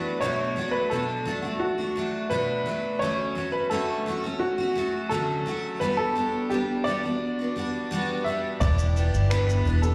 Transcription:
Already playing: F#3 A3 D4 F#4 B4
0.21 B2 F#3 A3 D4 F#4 C#5
0.56 F#3 A3 D4 F#4
0.71 B4
0.90 B2 F#3 A3 D4 F#4 A4
1.25 F#3 A3 D4 F#4
1.42 A3 D4 F#4
1.60 F#4
1.78 A3 D4 F#4
1.96 F#3 A3 D4 F#4
2.30 B2 F#3 A3 D4 F#4 B4
2.66 F#3 A3 D4 F#4
2.99 D3 F#3 A3 C#4 F#4 C#5
3.35 F#3 A3 C#4 F#4
3.52 B4
3.70 D3 F#3 A3 C#4 F#4 A4
4.06 F#3 A3 C#4 F#4
4.24 A3 C#4 F#4
4.39 F#4
4.58 A3 C#4 F#4
4.75 F#3 A3 C#4 F#4
5.09 D3 F#3 A3 C#4 F#4 A4
5.46 F#3 A3 C#4 F#4
5.80 G3 B3 D4 F#4 B4
5.97 A4
6.15 G3 B3 D4 F#4
6.50 G3 B3 D4 G4
6.84 G3 B3 D4 D5
6.89 F#4
7.03 B3 D4 F#4
7.39 B3 D4 F#4
7.56 G3 B3 D4 F#4
7.91 G3 B3 D4 F#4
8.24 G3 B3 E5
8.28 D4 F#4
8.60 E1 E3 B3 D4 G4 D5, kick, shaker
8.79 shaker
8.96 E3 B3 D4 G4, shaker
9.14 G1, shaker
9.30 E3 B3 D4 G4 B4, finger snap, shaker
9.49 shaker
9.65 E1 E3 B3 D4 G4
9.82 D4 G4 A4, shaker
9.86 B3

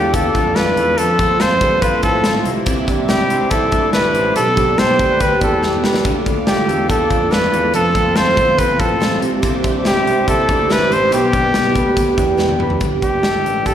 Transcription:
Already playing: E2 D3 A3 D4 F4 G4 A4 F5 D6
0.13 D3 A3 D4 F4 A4, kick, closed hi-hat
0.34 F2 A3 D4 F4, kick, closed hi-hat
0.55 D3 A3 D4 F4 B4, snare, closed hi-hat
0.76 E2 A3 D4 F4 A4, closed hi-hat
0.97 F2 F3 A3 C4 F4 A4 C6, closed hi-hat
1.19 A3 C4 F4, kick, closed hi-hat
1.40 F2 F3 A3 C4 F4 C5, snare, closed hi-hat
1.61 G2 A3 C4 F4 A4, kick, closed hi-hat
1.81 F3 A3 C4 F4 B4, kick, closed hi-hat
2.02 A2 A3 C4 F4 A4, kick, closed hi-hat
2.24 F3 A3 C4 F4, snare, closed hi-hat
2.44 C2 C3 G3 C4 D4 E4 E5 D6, closed hi-hat
2.66 C3 E3 G3 D4 E4, kick, closed hi-hat
2.86 G3 D4 E4, kick, closed hi-hat
3.08 C2 C3 E3 G3 D4 E4 G4, snare, closed hi-hat
3.29 C2 G3 D4 E4 C5, closed hi-hat
3.50 E3 G3 D4 E4 A4, kick, closed hi-hat
3.72 D2 G3 D4 E4, kick, closed hi-hat
3.93 C3 E3 G3 D4 E4 B4, snare, closed hi-hat
4.14 A1 G3 D4 E4 C5, closed hi-hat
4.35 B1 B2 G3 B3 D4 G4 A4 D5 G5, closed hi-hat
4.56 B3 D4 G4, kick, closed hi-hat
4.77 B1 B2 G3 B3 D4 G4 C5, snare, closed hi-hat
4.99 D2 B3 G4 A4, kick, closed hi-hat
5.09 B4
5.20 B3 D4 G4 B4, kick, closed hi-hat
5.41 E2 B3 D4 G4 A4, kick, closed hi-hat
5.62 B2 G3 B3 D4 G4, snare
5.83 C2 B3 D4 G4 B4, snare
5.94 snare
6.04 D2 D3 A3 D4 F4 A4 F5 D6, kick, closed hi-hat
6.25 A3 D4 F4, kick, closed hi-hat
6.46 D2 D3 A3 D4 F4 G4, snare, closed hi-hat
6.67 E2 A3 D4 F4 A4, closed hi-hat
6.88 D3 A3 D4 F4 A4, kick, closed hi-hat
7.10 F2 A3 D4 F4, kick, closed hi-hat
7.31 D3 A3 D4 F4 B4, snare, closed hi-hat
7.52 E2 A3 D4 F4 A4, closed hi-hat
7.73 F1 F3 A3 C4 F4 A4 C6, closed hi-hat
7.94 A3 C4 F4, kick, closed hi-hat
8.15 F1 F3 A3 C4 F4 C5, snare, closed hi-hat
8.36 G1 F4 A4, kick, closed hi-hat
8.57 F3 A3 C4 F4 B4, kick, closed hi-hat
8.78 A1 A3 C4 F4 A4, kick, closed hi-hat
9.00 F3 A3 C4 F4, snare, closed hi-hat
9.20 C2 C3 C4 D4 G4 C5 E5 D6, closed hi-hat
9.42 C3 E3 C4 D4 G4, kick, closed hi-hat
9.63 C4 D4 G4, kick, closed hi-hat
9.84 C2 C3 E3 C4 D4 E4 G4, snare, closed hi-hat
10.05 C2 C4 G4 C5, closed hi-hat
10.28 E3 C4 D4 E4 G4 A4, kick, closed hi-hat
10.48 D2 C4 D4 G4, kick, closed hi-hat
10.69 C3 E3 C4 D4 E4 G4 B4, snare, closed hi-hat
10.90 A1 C4 D4 G4 C5, closed hi-hat
11.11 B1 B2 G3 B3 D4 G4 B4 G5, closed hi-hat
11.32 B3 D4 G4, kick, closed hi-hat
11.53 B1 B2 G3 B3 D4 G4, snare, closed hi-hat
11.74 D2 D4 G4 B4, kick, closed hi-hat
11.96 G3 B3 D4 G4, kick, closed hi-hat
12.16 E2 B3 D4 G4, kick, closed hi-hat
12.37 B2 G3 B3 D4 G4, snare
12.49 high tom
12.59 F1 B3 D4 G4 B4, mid tom
12.70 floor tom
12.80 G1 G3 A3 D4 G4 B4, kick, closed hi-hat
13.01 D4 G4 B4, kick, closed hi-hat
13.23 G1 D4 G4 A4 B4, snare, closed hi-hat
13.43 A1 D4 G4 B4, closed hi-hat
13.65 G3 A3 D4 G4 A4 B4, kick, closed hi-hat

